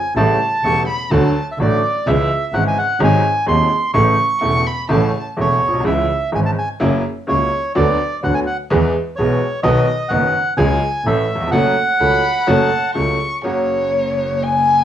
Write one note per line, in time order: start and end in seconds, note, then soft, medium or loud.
0.00 0.14 G#5 medium
0.15 0.36 A1 medium
0.15 0.37 A1 medium
0.15 0.37 A2 medium
0.15 0.36 C#3 medium
0.15 0.36 G3 medium
0.15 0.36 A3 medium
0.15 0.36 E4 medium
0.15 0.83 A5 loud
0.63 0.83 E1 soft
0.63 0.84 E1 medium
0.63 0.84 E2 soft
0.63 0.84 C#3 soft
0.63 0.84 G3 soft
0.63 0.84 A3 soft
0.63 0.84 E4 soft
0.63 0.86 C#6 medium
0.88 1.12 B5 medium
1.11 1.31 D2 medium
1.11 1.31 D3 medium
1.11 1.31 F#3 medium
1.11 1.31 A3 medium
1.11 1.31 F#4 medium
1.11 1.40 A5 medium
1.52 1.59 E5 medium
1.58 1.78 A1 medium
1.58 1.79 A1 medium
1.58 1.79 A2 medium
1.58 1.79 D3 soft
1.58 1.79 F#3 soft
1.58 1.79 A3 soft
1.58 1.79 F#4 medium
1.58 2.08 D5 medium
2.06 2.26 C#2 medium
2.06 2.26 C#3 medium
2.06 2.26 E3 medium
2.06 2.26 G#3 medium
2.06 2.27 E4 medium
2.06 2.55 E5 medium
2.53 2.72 G#1 medium
2.53 2.73 G#1 medium
2.53 2.73 G#2 medium
2.53 2.73 C#3 soft
2.53 2.73 E3 soft
2.53 2.73 G#3 soft
2.53 2.73 E4 soft
2.53 2.64 F#5 medium
2.68 2.78 G#5 medium
2.78 3.01 F#5 medium
3.00 3.20 G#1 medium
3.00 3.20 G#2 medium
3.00 3.19 C3 medium
3.00 3.20 F#3 medium
3.00 3.20 G#3 medium
3.00 3.20 D#4 medium
3.04 3.46 G#5 medium
3.46 3.66 D#1 medium
3.46 3.66 D#2 medium
3.46 3.67 D#2 medium
3.46 3.66 C3 soft
3.46 3.66 F#3 soft
3.46 3.67 G#3 soft
3.46 3.67 D#4 medium
3.46 3.91 C6 medium
3.94 4.14 A1 medium
3.94 4.14 A2 medium
3.94 4.14 C#3 medium
3.94 4.14 E3 medium
3.94 4.14 A3 medium
3.94 4.14 E4 medium
3.94 4.61 C#6 loud
4.40 4.61 E1 medium
4.40 4.62 E1 medium
4.40 4.61 E2 soft
4.40 4.61 C#3 soft
4.40 4.61 E3 soft
4.40 4.61 A3 soft
4.40 4.61 E4 soft
4.40 4.69 C#6 medium
4.67 4.89 B5 medium
4.89 5.09 A1 medium
4.89 5.10 A1 medium
4.89 5.09 A2 medium
4.89 5.09 C#3 medium
4.89 5.09 E3 medium
4.89 5.09 A3 medium
4.89 5.09 E4 medium
4.89 5.23 A5 medium
5.37 5.57 E1 soft
5.37 5.58 E1 medium
5.37 5.57 E2 medium
5.37 5.57 C#3 soft
5.37 5.57 E3 soft
5.37 5.57 A3 soft
5.37 5.57 E4 soft
5.41 5.84 C#5 medium
5.63 5.85 B1 soft
5.68 5.74 A#1 soft
5.73 5.79 B1 soft
5.80 5.86 C2 medium
5.84 6.05 C#2 medium
5.84 6.06 C#2 medium
5.84 6.05 C#3 medium
5.84 6.05 E3 medium
5.84 6.05 G#3 medium
5.84 6.06 E4 medium
5.84 6.30 E5 medium
6.32 6.53 G#1 soft
6.32 6.54 G#1 soft
6.32 6.53 G#2 soft
6.32 6.53 C#3 soft
6.32 6.53 E3 soft
6.32 6.53 G#3 soft
6.32 6.53 E4 soft
6.32 6.40 G#5 medium
6.46 6.51 A5 medium
6.58 6.69 G#5 medium
6.80 7.02 F#1 medium
6.80 7.01 F#2 medium
6.80 7.00 C#3 medium
6.80 7.01 F#3 medium
6.80 7.01 A#3 medium
6.80 7.01 E4 medium
7.27 7.48 C#2 soft
7.27 7.49 C#2 medium
7.27 7.48 C#3 medium
7.27 7.48 F#3 soft
7.27 7.48 A#3 soft
7.27 7.48 E4 soft
7.27 7.73 C#5 medium
7.75 7.95 D2 medium
7.75 7.96 D2 medium
7.75 7.96 D3 medium
7.75 7.96 F#3 medium
7.75 7.96 B3 medium
7.75 7.96 F#4 medium
7.75 8.20 D5 medium
8.23 8.43 D2 soft
8.23 8.44 D2 medium
8.23 8.43 D3 medium
8.23 8.43 F#3 soft
8.23 8.43 B3 soft
8.23 8.43 F#4 soft
8.23 8.34 F#5 medium
8.34 8.40 G#5 medium
8.47 8.57 F#5 medium
8.70 8.90 E2 medium
8.70 8.91 E2 medium
8.70 8.90 E3 medium
8.70 8.90 G#3 medium
8.70 8.90 B3 medium
8.70 8.91 G#4 medium
9.16 9.37 B1 medium
9.16 9.38 B1 medium
9.16 9.38 B2 medium
9.16 9.38 E3 soft
9.16 9.38 G#3 soft
9.16 9.38 B3 soft
9.16 9.38 G#4 medium
9.16 9.60 C#5 medium
9.63 9.84 B1 medium
9.63 9.84 B2 medium
9.63 9.84 D#3 medium
9.63 9.84 F#3 medium
9.63 9.84 B3 medium
9.63 9.84 F#4 medium
9.63 10.12 D#5 medium
10.09 10.31 F#1 medium
10.09 10.31 F#2 medium
10.09 10.31 D#3 soft
10.09 10.31 F#3 soft
10.09 10.31 B3 soft
10.09 10.31 F#4 medium
10.09 10.54 F#5 medium
10.57 10.78 C#2 medium
10.57 10.78 C#3 medium
10.57 10.78 F#3 medium
10.57 10.78 G#3 medium
10.57 10.78 C#4 medium
10.57 10.78 G#4 medium
10.57 11.07 G#5 loud
11.04 11.25 A1 medium
11.04 11.26 A1 medium
11.04 11.26 A2 medium
11.04 11.26 E3 soft
11.04 11.26 A3 soft
11.04 11.26 C#4 soft
11.04 11.26 A4 soft
11.04 11.50 E5 medium
11.35 11.41 D#2 soft
11.41 11.47 E2 medium
11.47 11.53 F2 medium
11.51 11.72 F#1 medium
11.51 11.73 F#2 medium
11.51 11.73 F#3 medium
11.51 11.73 A3 medium
11.51 11.73 C#4 medium
11.51 11.73 A4 medium
11.51 12.91 F#5 loud
12.00 12.20 C#2 medium
12.00 12.20 C#2 soft
12.00 12.21 C#3 medium
12.00 12.20 F#3 soft
12.00 12.20 A3 soft
12.00 12.21 C#4 soft
12.00 12.20 A4 soft
12.00 12.50 B5 medium
12.47 12.69 F#1 medium
12.47 12.68 F#2 medium
12.47 12.68 F#3 medium
12.47 12.68 A3 medium
12.47 12.68 C#4 medium
12.47 12.68 A4 medium
12.47 12.94 A5 medium
12.95 13.16 C#2 medium
12.95 13.17 C#2 medium
12.95 13.16 C#3 soft
12.95 13.16 F#3 soft
12.95 13.16 A3 soft
12.95 13.16 C#4 soft
12.95 13.16 A4 soft
12.95 13.40 C#6 medium
13.43 14.84 F#1 medium
13.43 14.84 F#2 medium
13.43 14.84 C#3 soft
13.43 14.84 F#3 medium
13.43 14.84 A#3 soft
13.43 14.84 F#4 medium
13.43 14.45 C#5 medium
14.43 14.84 G#5 medium